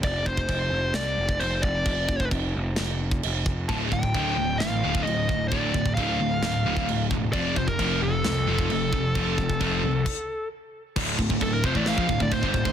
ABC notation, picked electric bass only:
X:1
M:4/4
L:1/16
Q:1/4=132
K:Dm
V:1 name="Picked electric bass" clef=bass
F,,,2 F,,,2 F,,,2 F,,,2 C,,2 F,,,2 F,,,2 F,,,2 | F,,,2 F,,,2 F,,,2 F,,,2 F,,,4 F,,,2 F,,,2 | D,,,2 D,,,2 D,,,2 D,,,2 A,,,2 D,,,2 D,,,2 D,,,2 | D,,,2 D,,,2 D,,,2 D,,,2 D,,,4 D,,,2 E,,,2 |
F,,,2 F,,,2 F,,,2 F,,,2 C,,2 F,,,2 F,,,2 F,,,2 | F,,,2 F,,,2 F,,,2 C,,2 z8 | D,,,2 D,,, D,,, D,,,2 F,,, A,,,2 B,,, D,,, D,,, D,,, G,,, D,,, D,,, |]